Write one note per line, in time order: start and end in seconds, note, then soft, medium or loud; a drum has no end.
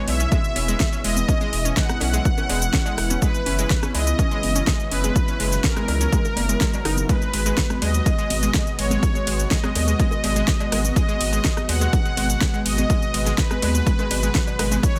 0.00 3.18 B2 medium
0.00 7.05 E3 medium
0.00 3.18 G#3 medium
0.00 3.18 B3 medium
0.00 7.05 E4 loud
0.08 0.26 B1 loud
0.08 0.95 E5 loud
0.08 open hi-hat loud
0.08 cowbell medium
0.20 0.25 C#4 medium
0.20 closed hi-hat medium
0.20 cabasa medium
0.32 0.37 G#3 loud
0.32 kick loud
0.32 closed hi-hat soft
0.32 cabasa medium
0.44 closed hi-hat soft
0.44 cabasa soft
0.56 0.74 E1 medium
0.56 0.61 C#4 medium
0.56 open hi-hat loud
0.56 high conga medium
0.68 0.73 G#3 loud
0.68 closed hi-hat medium
0.68 cabasa medium
0.80 kick loud
0.80 snare loud
0.80 closed hi-hat soft
0.80 cabasa medium
0.93 0.97 C#4 medium
0.93 closed hi-hat soft
0.93 cabasa soft
1.04 1.23 E1 loud
1.04 1.09 G#3 loud
1.04 1.67 D#5 loud
1.04 open hi-hat loud
1.16 closed hi-hat medium
1.16 high conga medium
1.16 cabasa medium
1.28 1.33 C#4 medium
1.28 kick loud
1.28 closed hi-hat medium
1.28 cabasa medium
1.41 1.46 G#3 loud
1.41 closed hi-hat soft
1.41 cabasa soft
1.53 1.71 E1 loud
1.53 open hi-hat loud
1.65 1.70 C#4 medium
1.65 closed hi-hat medium
1.65 cabasa medium
1.77 1.82 G#3 loud
1.77 3.13 F#5 loud
1.77 kick loud
1.77 snare loud
1.77 closed hi-hat medium
1.77 cabasa medium
1.89 cross-stick medium
1.89 closed hi-hat soft
1.89 high conga medium
1.89 cabasa soft
2.00 2.20 B1 loud
2.00 2.06 C#4 medium
2.00 open hi-hat loud
2.00 cowbell medium
2.00 high bongo medium
2.13 2.18 G#3 loud
2.13 closed hi-hat medium
2.13 cabasa medium
2.25 kick loud
2.25 closed hi-hat medium
2.25 cabasa medium
2.38 2.42 C#4 medium
2.38 closed hi-hat soft
2.38 high bongo medium
2.38 cabasa soft
2.49 2.68 E1 medium
2.49 2.54 G#3 loud
2.49 open hi-hat loud
2.49 cowbell loud
2.49 high conga medium
2.62 closed hi-hat medium
2.62 cabasa medium
2.73 2.79 C#4 medium
2.73 kick loud
2.73 snare loud
2.73 closed hi-hat medium
2.73 cabasa medium
2.86 2.91 G#3 loud
2.86 closed hi-hat soft
2.86 cowbell medium
2.86 cabasa soft
2.97 3.16 E1 loud
2.97 cross-stick medium
2.97 open hi-hat loud
2.97 high bongo medium
3.10 3.15 C#4 medium
3.10 closed hi-hat medium
3.10 high conga medium
3.10 cabasa medium
3.22 7.05 C#3 medium
3.22 14.79 F#3 medium
3.22 3.27 G#3 loud
3.22 14.79 B3 medium
3.22 3.85 B4 loud
3.22 kick loud
3.22 closed hi-hat medium
3.22 cabasa medium
3.35 closed hi-hat soft
3.35 cabasa soft
3.46 3.65 F#1 loud
3.46 3.51 C#4 medium
3.46 open hi-hat loud
3.59 3.63 G#3 loud
3.59 closed hi-hat medium
3.59 cabasa medium
3.70 kick loud
3.70 snare loud
3.70 closed hi-hat medium
3.70 cabasa medium
3.82 3.88 C#4 medium
3.82 cross-stick medium
3.82 closed hi-hat soft
3.82 high conga medium
3.82 cabasa soft
3.94 4.13 C#2 loud
3.94 4.00 G#3 loud
3.94 4.82 D#5 loud
3.94 open hi-hat loud
3.94 cowbell medium
4.07 closed hi-hat medium
4.07 cabasa medium
4.19 4.24 C#4 medium
4.19 kick loud
4.19 closed hi-hat medium
4.19 cabasa medium
4.31 4.36 G#3 loud
4.31 closed hi-hat soft
4.31 cabasa soft
4.43 4.61 F#1 medium
4.43 open hi-hat loud
4.43 high conga medium
4.55 4.60 C#4 medium
4.55 closed hi-hat medium
4.55 cabasa medium
4.67 4.72 G#3 loud
4.67 kick loud
4.67 snare loud
4.67 closed hi-hat medium
4.67 cabasa medium
4.80 closed hi-hat soft
4.80 cabasa soft
4.91 5.10 F#1 loud
4.91 4.96 C#4 medium
4.91 5.55 B4 loud
4.91 open hi-hat loud
5.04 5.08 G#3 loud
5.04 closed hi-hat medium
5.04 high conga medium
5.04 cabasa medium
5.16 kick loud
5.16 closed hi-hat medium
5.16 cabasa medium
5.28 5.33 C#4 medium
5.28 closed hi-hat soft
5.28 cabasa soft
5.40 5.58 F#1 loud
5.40 5.45 G#3 loud
5.40 open hi-hat loud
5.52 snare soft
5.52 closed hi-hat medium
5.52 cabasa medium
5.64 5.69 C#4 medium
5.64 7.00 A#4 loud
5.64 kick loud
5.64 snare loud
5.64 closed hi-hat medium
5.64 cabasa medium
5.76 5.81 G#3 loud
5.76 cross-stick medium
5.76 closed hi-hat soft
5.76 high conga medium
5.76 cabasa soft
5.88 6.07 C#2 loud
5.88 open hi-hat loud
5.88 cowbell medium
5.88 high bongo medium
6.01 6.05 C#4 medium
6.01 closed hi-hat medium
6.01 cabasa medium
6.12 6.17 G#3 loud
6.12 kick loud
6.12 closed hi-hat medium
6.12 cabasa medium
6.25 closed hi-hat soft
6.25 high bongo medium
6.25 cabasa soft
6.36 6.55 F#1 medium
6.36 6.42 A#3 medium
6.36 open hi-hat loud
6.36 cowbell medium
6.36 high conga medium
6.49 6.52 G#3 medium
6.49 closed hi-hat medium
6.49 cabasa medium
6.61 6.68 G#3 loud
6.61 kick loud
6.61 snare loud
6.61 closed hi-hat medium
6.61 cabasa medium
6.73 6.80 F#3 medium
6.73 closed hi-hat soft
6.73 cowbell medium
6.73 cabasa soft
6.85 7.03 F#1 loud
6.85 6.88 D#4 loud
6.85 cross-stick medium
6.85 open hi-hat loud
6.85 high bongo medium
6.97 closed hi-hat medium
6.97 high conga medium
6.97 cabasa medium
7.09 14.99 B2 medium
7.09 14.99 G#3 medium
7.09 7.14 G#3 loud
7.09 14.79 F#4 loud
7.09 7.72 B4 loud
7.09 kick loud
7.09 closed hi-hat medium
7.09 ride medium
7.09 cabasa medium
7.22 closed hi-hat soft
7.22 cabasa soft
7.34 7.52 G#1 loud
7.34 7.41 G#3 medium
7.34 open hi-hat loud
7.34 ride medium
7.46 7.50 G#3 loud
7.46 closed hi-hat medium
7.46 cabasa medium
7.57 kick loud
7.57 snare loud
7.57 closed hi-hat medium
7.57 ride medium
7.57 cabasa medium
7.70 7.77 G#3 medium
7.70 cross-stick medium
7.70 closed hi-hat soft
7.70 high conga loud
7.70 cabasa soft
7.82 8.00 D#2 loud
7.82 7.87 G#3 loud
7.82 8.69 D#5 loud
7.82 open hi-hat loud
7.82 ride medium
7.82 cowbell medium
7.94 closed hi-hat medium
7.94 cabasa medium
8.06 8.13 G#3 medium
8.06 kick loud
8.06 closed hi-hat medium
8.06 ride medium
8.06 cabasa medium
8.18 8.23 G#3 loud
8.18 closed hi-hat soft
8.18 cabasa soft
8.30 8.49 G#1 medium
8.30 open hi-hat loud
8.30 ride medium
8.30 high conga medium
8.43 8.50 G#3 medium
8.43 closed hi-hat medium
8.43 cabasa medium
8.54 8.59 G#3 loud
8.54 kick loud
8.54 snare loud
8.54 closed hi-hat medium
8.54 ride medium
8.54 cabasa medium
8.67 closed hi-hat soft
8.67 cabasa soft
8.79 8.97 G#1 loud
8.79 8.86 G#3 medium
8.79 9.42 C#5 loud
8.79 open hi-hat loud
8.79 ride medium
8.90 8.96 G#3 loud
8.90 closed hi-hat medium
8.90 high conga loud
8.90 cabasa medium
9.03 kick loud
9.03 closed hi-hat medium
9.03 ride medium
9.03 cabasa medium
9.15 9.22 G#3 medium
9.15 closed hi-hat soft
9.15 cabasa soft
9.27 9.45 G#1 loud
9.27 9.32 G#3 loud
9.27 open hi-hat loud
9.27 ride medium
9.39 closed hi-hat medium
9.39 cabasa medium
9.51 9.58 G#3 medium
9.51 10.87 D#5 loud
9.51 kick loud
9.51 snare loud
9.51 closed hi-hat medium
9.51 ride medium
9.51 cabasa medium
9.63 9.68 G#3 loud
9.63 cross-stick medium
9.63 closed hi-hat soft
9.63 high conga loud
9.63 cabasa soft
9.75 9.94 D#2 loud
9.75 open hi-hat loud
9.75 ride medium
9.75 cowbell medium
9.75 high bongo medium
9.88 9.95 G#3 medium
9.88 closed hi-hat medium
9.88 cabasa medium
9.99 10.04 G#3 loud
9.99 kick loud
9.99 closed hi-hat medium
9.99 ride medium
9.99 cabasa medium
10.11 closed hi-hat soft
10.11 high bongo medium
10.11 cabasa soft
10.24 10.42 G#1 medium
10.24 10.31 G#3 medium
10.24 open hi-hat loud
10.24 ride medium
10.24 cowbell loud
10.24 high conga medium
10.36 10.41 G#3 loud
10.36 closed hi-hat medium
10.36 cabasa medium
10.48 kick loud
10.48 snare loud
10.48 closed hi-hat medium
10.48 ride medium
10.48 cabasa medium
10.60 10.67 G#3 medium
10.60 closed hi-hat soft
10.60 cowbell loud
10.60 cabasa soft
10.72 10.90 G#1 loud
10.72 10.77 G#3 loud
10.72 cross-stick medium
10.72 open hi-hat loud
10.72 ride medium
10.72 high bongo medium
10.84 closed hi-hat medium
10.84 high conga medium
10.84 cabasa medium
10.96 11.03 G#3 medium
10.96 11.59 D#5 loud
10.96 kick loud
10.96 closed hi-hat medium
10.96 ride medium
10.96 cabasa medium
11.08 11.13 G#3 loud
11.08 closed hi-hat soft
11.08 cabasa soft
11.21 11.39 G#1 loud
11.21 open hi-hat loud
11.21 ride medium
11.33 11.40 G#3 medium
11.33 closed hi-hat medium
11.33 cabasa medium
11.44 11.49 G#3 loud
11.44 kick loud
11.44 snare loud
11.44 closed hi-hat medium
11.44 ride medium
11.44 cabasa medium
11.57 cross-stick medium
11.57 closed hi-hat soft
11.57 high conga medium
11.57 cabasa soft
11.69 11.87 D#2 loud
11.69 11.76 G#3 medium
11.69 12.56 F#5 loud
11.69 open hi-hat loud
11.69 ride medium
11.69 cowbell medium
11.81 11.86 G#3 loud
11.81 closed hi-hat medium
11.81 cabasa medium
11.93 kick loud
11.93 closed hi-hat soft
11.93 ride medium
11.93 cabasa medium
12.05 12.12 G#3 medium
12.05 closed hi-hat soft
12.05 cabasa soft
12.17 12.36 G#1 medium
12.17 12.22 G#3 loud
12.17 open hi-hat loud
12.17 ride medium
12.17 high conga medium
12.30 closed hi-hat medium
12.30 cabasa medium
12.41 12.49 G#3 medium
12.41 kick loud
12.41 snare loud
12.41 closed hi-hat medium
12.41 ride medium
12.41 cabasa medium
12.54 12.58 G#3 loud
12.54 closed hi-hat soft
12.54 cabasa soft
12.66 12.84 G#1 loud
12.66 13.29 D#5 loud
12.66 open hi-hat loud
12.66 ride medium
12.78 12.85 G#3 medium
12.78 closed hi-hat medium
12.78 high conga loud
12.78 cabasa medium
12.90 12.95 G#3 loud
12.90 kick loud
12.90 closed hi-hat medium
12.90 ride medium
12.90 cabasa medium
13.02 closed hi-hat soft
13.02 cabasa soft
13.14 13.32 G#1 loud
13.14 13.21 G#3 medium
13.14 open hi-hat loud
13.14 ride medium
13.26 13.31 G#3 loud
13.26 snare soft
13.26 closed hi-hat medium
13.26 cabasa medium
13.38 14.74 B4 loud
13.38 kick loud
13.38 snare loud
13.38 closed hi-hat medium
13.38 ride medium
13.38 cabasa medium
13.51 13.58 G#3 medium
13.51 cross-stick medium
13.51 closed hi-hat soft
13.51 high conga loud
13.51 cabasa soft
13.62 13.81 D#2 loud
13.62 13.67 G#3 loud
13.62 open hi-hat loud
13.62 ride medium
13.62 cowbell loud
13.62 high bongo medium
13.75 closed hi-hat soft
13.75 cabasa medium
13.87 13.94 G#3 medium
13.87 kick loud
13.87 closed hi-hat soft
13.87 ride medium
13.87 cabasa medium
13.99 14.04 G#3 loud
13.99 closed hi-hat soft
13.99 high bongo medium
13.99 cabasa soft
14.10 14.29 G#1 loud
14.10 open hi-hat loud
14.10 ride medium
14.10 cowbell medium
14.10 high conga medium
14.23 14.28 G#3 medium
14.23 closed hi-hat medium
14.23 cabasa medium
14.35 14.40 F#3 medium
14.35 kick loud
14.35 snare loud
14.35 closed hi-hat medium
14.35 ride medium
14.35 cabasa medium
14.47 closed hi-hat soft
14.47 cowbell medium
14.47 cabasa soft
14.59 14.78 G#1 medium
14.59 14.64 G#3 loud
14.59 cross-stick medium
14.59 open hi-hat loud
14.59 ride medium
14.59 high bongo medium
14.71 14.74 G#3 loud
14.71 closed hi-hat medium
14.71 high conga medium
14.71 cabasa medium
14.83 14.99 E3 medium
14.83 14.99 B3 medium
14.83 14.99 E4 medium
14.83 14.99 C#5 loud
14.83 kick loud
14.83 closed hi-hat medium
14.83 ride medium
14.83 cabasa medium
14.96 14.98 D#3 medium
14.96 closed hi-hat soft
14.96 cabasa soft